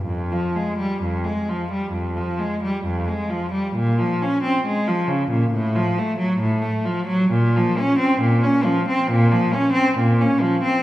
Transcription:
\new Staff \with { instrumentName = "Cello" } { \clef bass \time 4/4 \key f \minor \tempo 4 = 67 f,16 f16 aes16 g16 f,16 aes16 f16 g16 f,16 f16 aes16 g16 f,16 aes16 f16 g16 | bes,16 f16 des'16 c'16 aes16 f16 des16 bes,16 a,16 f16 a16 ges16 a,16 a16 f16 ges16 | bes,16 f16 des'16 c'16 bes,16 des'16 f16 c'16 bes,16 f16 des'16 c'16 bes,16 des'16 f16 c'16 | }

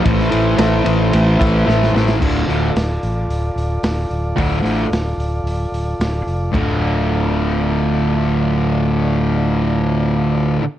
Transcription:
<<
  \new Staff \with { instrumentName = "Transistor combo organ" } { \time 4/4 \key d \minor \tempo 4 = 111 <e' a' c''>1 | <f' a' d''>1~ | <f' a' d''>1 | <f' a' d''>1~ |
<f' a' d''>1 | }
  \new Staff \with { instrumentName = "Distorted electric guitar" } { \clef bass \time 4/4 \key d \minor <a, e a>8 <a, e a>8 <a, e a>8 <a, e a>8 <a, e a>8 <a, e a>8 <a, e a>8 <a, e a>8 | <d, a, d>8 <d, a, d>8 r2. | <d, a, d>8 <d, a, d>8 r2. | <d, a, d>1~ |
<d, a, d>1 | }
  \new Staff \with { instrumentName = "Fingered electric bass" } { \clef bass \time 4/4 \key d \minor a,,8 a,,8 a,,8 a,,8 a,,8 a,,8 a,,8 a,,8 | d,,8 d,,8 d,,8 a,,8 d,,8 d,,8 d,,8 d,,8 | d,,8 a,,8 d,,8 d,,8 d,,8 d,,8 d,,8 f,,8 | d,,1~ |
d,,1 | }
  \new DrumStaff \with { instrumentName = "Drums" } \drummode { \time 4/4 <bd cymr>16 sn16 cymr8 <cymr sn>8 cymr8 cymr8 <bd cymr>8 sn16 sn16 sn16 sn16 | <cymc bd>8 hho8 <hho sn>8 hho8 hho8 hho8 <hho sn>8 hho8 | <hho bd>8 hho8 <hho sn>8 hho8 hho8 hho8 <hho sn>8 hho8 | <cymc bd tomfh>4 r4 r4 r4 |
r4 r4 r4 r4 | }
>>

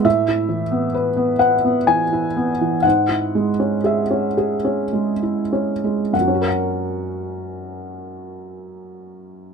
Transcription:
\new Staff \with { instrumentName = "Felt piano" } { \time 3/4 \key cis \phrygian \tempo 4 = 56 << { e''4. fis''8 gis''4 | fis''4 e''8 r4. | <fis, fis cis' fis' ais' fis''>2. | } \\ { a,16 e'16 e16 b16 b'16 b16 b'16 b16 e16 e'16 b16 e16 | gis,16 e'16 gis16 cis'16 gis'16 cis'16 gis'16 cis'16 gis16 e'16 cis'16 gis16 | r2. | } >> }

